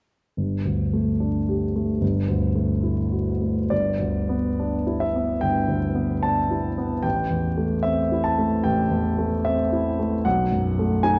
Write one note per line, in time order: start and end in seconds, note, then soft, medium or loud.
0.37 1.98 G1 soft
0.65 1.09 D2 soft
0.93 1.37 A3 soft
1.20 1.64 D4 soft
1.49 1.91 G4 soft
1.76 2.02 A3 soft
2.01 3.67 G1 soft
2.28 2.71 D2 soft
2.55 2.99 A3 soft
2.83 3.29 E4 soft
3.12 3.60 F#4 soft
3.41 3.71 A3 soft
3.70 5.38 G1 soft
3.70 5.01 D5 medium
3.99 4.47 D2 soft
4.29 4.75 B3 soft
4.59 5.04 D4 soft
4.87 5.31 E4 soft
5.00 5.41 E5 medium
5.16 5.58 B3 soft
5.41 7.01 G1 soft
5.41 6.22 G5 medium
5.68 6.12 D2 soft
5.95 6.39 B3 soft
6.23 6.67 D4 soft
6.23 7.04 A5 medium
6.51 6.94 E4 soft
6.78 7.05 B3 soft
7.03 8.60 A1 soft
7.03 7.83 G5 medium
7.30 7.73 E2 soft
7.57 8.00 A3 soft
7.83 8.27 C4 soft
7.83 8.24 E5 medium
8.12 8.54 E4 soft
8.24 8.64 A5 medium
8.38 8.81 A3 soft
8.64 10.21 A1 soft
8.64 9.44 G5 medium
8.91 9.34 E2 soft
9.18 9.61 A3 soft
9.45 9.89 C4 soft
9.45 10.25 E5 medium
9.72 10.15 E4 soft
9.99 10.25 A3 soft
10.25 11.19 B1 soft
10.25 11.03 F#5 medium
10.52 10.93 F#2 soft
10.79 11.19 A3 soft
11.03 11.19 D#4 soft
11.03 11.19 G#5 medium